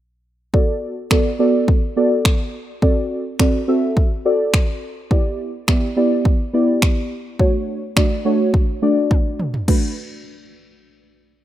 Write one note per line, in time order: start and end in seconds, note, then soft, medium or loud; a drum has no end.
0.53 0.93 B3 medium
0.53 0.93 F#4 medium
0.53 0.94 A4 medium
0.53 0.94 D5 medium
0.53 kick loud
1.11 1.31 B3 medium
1.11 1.31 F#4 medium
1.11 1.31 A4 medium
1.11 1.31 D5 loud
1.11 finger snap loud
1.11 kick loud
1.39 1.79 B3 medium
1.39 1.79 F#4 medium
1.39 1.79 A4 medium
1.39 1.79 D5 loud
1.68 kick loud
1.96 2.56 B3 medium
1.96 2.56 F#4 medium
1.96 2.56 A4 medium
1.96 2.56 D5 loud
2.25 finger snap loud
2.25 kick loud
2.82 3.22 C4 medium
2.82 3.22 F#4 medium
2.82 3.22 A4 medium
2.82 3.22 D5 medium
2.82 kick loud
3.39 3.59 C4 medium
3.39 3.59 F#4 medium
3.39 3.59 A4 medium
3.39 3.59 D5 medium
3.39 finger snap loud
3.39 kick loud
3.68 4.08 C4 medium
3.68 4.08 F#4 medium
3.68 4.08 A4 medium
3.68 4.08 E5 loud
3.97 kick loud
4.25 4.85 C4 medium
4.25 4.85 F#4 medium
4.25 4.85 A4 medium
4.25 4.85 D5 loud
4.54 finger snap loud
4.54 kick loud
5.11 5.51 B3 medium
5.11 5.51 E4 medium
5.11 5.51 G4 medium
5.11 5.51 D5 loud
5.11 kick loud
5.68 5.88 B3 medium
5.68 5.88 E4 medium
5.68 5.88 G4 medium
5.68 5.88 D5 loud
5.68 finger snap loud
5.68 kick loud
5.96 6.36 B3 medium
5.96 6.36 E4 medium
5.96 6.36 G4 medium
5.96 6.37 D5 loud
6.25 kick loud
6.53 7.13 B3 medium
6.53 7.13 E4 medium
6.53 7.13 G4 medium
6.53 7.13 D5 loud
6.82 finger snap loud
6.82 kick loud
7.39 7.79 A3 medium
7.39 7.79 D4 medium
7.39 7.79 F#4 medium
7.39 7.79 C#5 medium
7.39 kick loud
7.96 8.16 A3 medium
7.96 8.16 D4 medium
7.96 8.17 F#4 medium
7.96 8.17 D5 loud
7.96 finger snap loud
7.96 kick loud
8.25 8.65 A3 loud
8.25 8.65 D4 medium
8.25 8.65 F#4 medium
8.25 8.65 C#5 loud
8.54 kick loud
8.82 9.42 A3 medium
8.82 9.42 D4 medium
8.82 9.42 F#4 medium
8.82 9.42 D5 loud
9.11 kick loud
9.11 high tom medium
9.40 mid tom medium
9.54 floor tom medium
9.68 9.95 A3 medium
9.68 9.95 D4 medium
9.68 9.95 F#4 medium
9.68 9.95 B4 medium
9.68 kick loud
9.68 crash medium